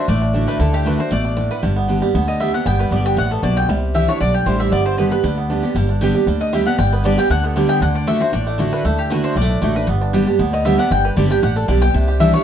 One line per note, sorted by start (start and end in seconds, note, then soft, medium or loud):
0.00 0.22 D4 medium
0.08 0.45 A1 loud
0.08 0.57 A2 medium
0.08 0.45 A3 medium
0.08 0.45 D5 medium
0.22 0.34 D4 medium
0.33 0.58 D3 medium
0.33 0.59 A3 medium
0.33 0.60 D4 medium
0.33 0.59 D4 medium
0.33 0.59 F#4 medium
0.47 0.72 A3 medium
0.47 0.60 B4 medium
0.59 0.96 D2 medium
0.59 0.84 D3 medium
0.59 0.85 D4 medium
0.59 0.73 A4 medium
0.73 1.09 A3 medium
0.73 0.86 G4 medium
0.85 0.98 D3 medium
0.85 0.99 A3 medium
0.85 0.99 D4 medium
0.85 0.97 F#4 medium
0.85 0.99 B4 medium
0.98 1.25 D4 medium
0.98 1.11 D4 soft
0.98 1.10 F#4 medium
0.98 1.12 C5 medium
1.11 1.48 A1 medium
1.11 1.36 B2 medium
1.11 1.48 A3 medium
1.11 1.48 D5 medium
1.25 1.37 D4 medium
1.37 1.61 A2 medium
1.37 1.88 D4 medium
1.51 1.63 D3 medium
1.51 1.62 B4 medium
1.63 1.99 G1 medium
1.63 2.12 G2 medium
1.63 2.02 G3 medium
1.76 2.12 B3 medium
1.88 2.01 D3 medium
1.88 2.02 G3 medium
1.88 2.02 B3 medium
1.88 2.53 D4 medium
1.88 2.00 G4 medium
2.02 2.27 G3 medium
2.02 2.15 B3 soft
2.02 2.14 G4 soft
2.14 2.51 D2 medium
2.14 2.39 D3 medium
2.14 2.39 B3 medium
2.28 2.79 G3 medium
2.28 2.40 D#5 medium
2.40 2.53 D3 medium
2.40 2.53 G3 medium
2.40 2.65 B3 medium
2.40 2.54 B3 medium
2.40 2.53 G4 medium
2.40 2.53 E5 medium
2.54 2.67 B3 medium
2.54 3.05 D4 medium
2.54 2.66 G4 medium
2.54 2.66 F#5 medium
2.66 2.84 G1 medium
2.66 3.15 G2 medium
2.66 2.91 B3 medium
2.66 2.79 G5 medium
2.79 3.17 G3 medium
2.79 2.92 B4 medium
2.91 3.13 G1 medium
2.91 3.16 D3 medium
2.91 3.16 G3 medium
2.91 3.28 B3 soft
2.91 3.16 B3 medium
2.91 3.17 G4 medium
2.91 3.05 D5 medium
3.05 3.42 D4 medium
3.05 3.17 G5 loud
3.17 3.39 A1 medium
3.17 3.42 A2 medium
3.17 3.69 G3 medium
3.17 3.31 F#5 medium
3.31 3.67 B3 medium
3.31 3.43 A4 medium
3.43 3.65 B1 medium
3.43 3.68 B2 medium
3.43 4.08 D4 medium
3.43 3.56 D5 medium
3.56 3.69 D3 medium
3.56 3.69 G5 medium
3.69 4.05 C2 loud
3.69 4.19 C3 loud
3.69 4.46 G3 medium
3.94 4.08 E3 medium
3.94 4.08 G3 medium
3.94 4.08 D4 medium
3.94 4.07 E4 medium
3.94 5.35 G4 medium
3.94 4.08 E5 medium
4.08 4.34 D4 medium
4.08 4.21 D4 soft
4.08 4.20 E4 medium
4.08 4.20 C#5 medium
4.20 4.43 B1 medium
4.20 4.70 G2 medium
4.20 4.57 D3 medium
4.20 4.34 D5 loud
4.34 5.11 D4 soft
4.34 4.46 G4 medium
4.46 4.68 A1 medium
4.46 4.71 E3 medium
4.46 4.85 G3 medium
4.46 4.71 G3 medium
4.46 4.72 D4 medium
4.46 4.72 E4 medium
4.46 4.59 C5 medium
4.60 4.72 C4 medium
4.60 4.72 E5 medium
4.72 5.09 G1 medium
4.72 5.22 G2 medium
4.72 4.97 B3 medium
4.72 4.85 D5 medium
4.86 5.21 G3 medium
4.86 4.98 C5 medium
4.98 5.11 D3 medium
4.98 5.11 G3 medium
4.98 5.35 B3 medium
4.98 5.12 B3 medium
4.98 5.10 G4 medium
4.98 5.10 B4 medium
5.11 5.24 B3 soft
5.11 5.47 D4 medium
5.11 5.23 G4 medium
5.11 5.36 B4 medium
5.23 5.60 D2 medium
5.23 5.48 D3 medium
5.23 5.61 G3 medium
5.37 5.73 B3 medium
5.49 5.62 D3 medium
5.49 5.63 G3 medium
5.49 5.63 B3 medium
5.49 5.76 D4 medium
5.49 5.61 G4 medium
5.63 5.76 D3 medium
5.63 5.76 B3 medium
5.63 5.75 G4 medium
5.75 6.11 G1 medium
5.75 6.25 G2 loud
5.75 6.12 G3 medium
5.89 6.14 D4 medium
6.01 6.14 D3 medium
6.01 6.15 G3 medium
6.01 6.15 B3 loud
6.01 6.38 G4 medium
6.01 6.14 G4 medium
6.15 6.28 B3 soft
6.15 6.40 D4 medium
6.15 6.27 G4 medium
6.27 6.63 D2 medium
6.27 6.51 D3 medium
6.27 6.52 G3 medium
6.40 6.66 D4 soft
6.40 6.53 D#5 medium
6.53 6.66 D3 medium
6.53 6.78 G3 medium
6.53 6.66 G3 medium
6.53 6.66 B3 loud
6.53 6.64 G4 loud
6.53 6.66 E5 medium
6.66 6.79 B3 medium
6.66 7.04 D4 medium
6.66 6.78 G4 medium
6.66 6.78 F#5 medium
6.78 7.15 G1 medium
6.78 7.28 G2 medium
6.78 7.15 G3 medium
6.78 6.92 G5 loud
6.92 7.28 B3 medium
6.92 7.04 B4 medium
7.04 7.17 D3 medium
7.04 7.18 G3 loud
7.04 7.18 B3 loud
7.04 7.30 D4 medium
7.04 7.17 G4 medium
7.04 7.18 D5 medium
7.18 7.54 G3 medium
7.18 7.31 B3 soft
7.18 7.30 G4 medium
7.18 7.30 G5 loud
7.30 7.66 D2 medium
7.30 7.55 D3 medium
7.30 7.82 D4 medium
7.30 7.43 F#5 medium
7.44 7.68 B3 medium
7.44 7.56 A4 medium
7.56 7.80 D3 medium
7.56 7.82 G3 medium
7.56 7.81 G3 loud
7.56 7.81 B3 loud
7.56 7.81 G4 loud
7.56 7.69 D5 medium
7.69 7.81 B3 medium
7.69 7.81 G5 loud
7.81 8.18 D2 loud
7.81 8.06 D3 loud
7.81 7.95 D4 medium
7.81 7.95 F#5 medium
7.95 8.07 D4 medium
7.95 8.07 D5 medium
8.07 8.20 D3 medium
8.07 8.21 A3 loud
8.07 8.20 D4 medium
8.07 8.21 D4 medium
8.07 8.19 F#4 loud
8.07 8.21 E5 loud
8.20 8.33 D4 medium
8.20 8.33 F#4 medium
8.20 8.33 C5 medium
8.33 8.69 A1 medium
8.33 8.82 A2 medium
8.33 8.59 D4 medium
8.33 8.70 D5 medium
8.47 8.82 A3 medium
8.58 8.83 D3 medium
8.58 8.84 A3 medium
8.58 8.73 D4 medium
8.58 8.84 D4 loud
8.58 8.84 F#4 loud
8.73 9.10 D4 medium
8.73 8.85 B4 medium
8.84 9.21 D2 medium
8.84 9.09 D3 medium
8.84 9.21 A3 medium
8.84 8.98 A4 medium
8.98 9.10 G4 medium
9.10 9.35 D3 loud
9.10 9.35 A3 medium
9.10 9.23 D4 medium
9.10 9.36 D4 loud
9.10 9.36 F#4 loud
9.10 9.24 B4 medium
9.24 9.49 D4 medium
9.24 9.36 C5 loud
9.36 9.58 B1 loud
9.36 9.86 A2 medium
9.36 9.41 G3 medium
9.36 9.73 D5 medium
9.41 9.60 A3 medium
9.49 9.75 D4 medium
9.61 9.84 A1 medium
9.61 9.75 D3 medium
9.61 9.88 A3 medium
9.61 9.75 A3 medium
9.61 9.76 D4 medium
9.61 9.73 F#4 loud
9.75 10.01 D4 medium
9.75 9.88 D4 soft
9.75 9.87 F#4 medium
9.75 9.87 B4 medium
9.87 10.24 G1 loud
9.87 10.37 G2 loud
9.87 10.24 B3 medium
10.01 10.27 D4 medium
10.13 10.26 D3 loud
10.13 10.27 G3 loud
10.13 10.27 B3 loud
10.13 11.04 G4 medium
10.13 10.25 G4 loud
10.27 10.40 B3 soft
10.27 10.78 D4 medium
10.27 10.39 G4 soft
10.39 10.76 D2 loud
10.39 10.64 D3 medium
10.39 10.64 B3 medium
10.53 11.17 G3 medium
10.53 10.65 D#5 medium
10.65 10.78 D3 medium
10.65 10.78 G3 loud
10.65 11.02 B3 medium
10.65 10.79 B3 loud
10.65 10.77 G4 medium
10.65 10.78 E5 medium
10.78 10.91 B3 medium
10.78 10.91 D4 medium
10.78 10.90 G4 medium
10.78 10.91 F#5 medium
10.91 11.09 G1 medium
10.91 11.40 G2 medium
10.91 11.30 D4 medium
10.91 11.04 G5 loud
11.05 11.43 G4 medium
11.05 11.16 B4 medium
11.17 11.39 G1 medium
11.17 11.30 D3 loud
11.17 11.68 G3 medium
11.17 11.30 G3 loud
11.17 11.30 B3 medium
11.17 11.29 G4 loud
11.17 11.30 D5 medium
11.30 11.43 B3 soft
11.30 11.56 D4 medium
11.30 11.42 G4 medium
11.30 11.43 G5 loud
11.42 11.64 A1 loud
11.42 11.67 D3 medium
11.42 11.81 G4 medium
11.42 11.56 F#5 medium
11.56 11.94 D4 soft
11.56 11.68 A4 medium
11.68 11.90 B1 medium
11.68 11.81 D3 medium
11.68 12.20 G3 medium
11.68 11.81 G3 medium
11.68 11.82 B3 medium
11.68 11.80 G4 medium
11.68 11.81 D5 medium
11.82 11.95 B3 medium
11.82 11.94 G4 medium
11.82 12.08 G4 medium
11.82 11.94 G5 loud
11.94 12.31 C2 loud
11.94 12.43 C3 loud
11.94 12.31 D4 medium
12.08 12.43 G4 medium
12.20 12.33 E3 loud
12.20 12.44 G3 medium
12.20 12.33 G3 medium
12.20 12.33 D4 loud
12.20 12.32 E4 medium
12.20 12.33 E5 medium
12.33 12.44 D4 medium
12.33 12.44 E4 medium
12.33 12.44 C#5 loud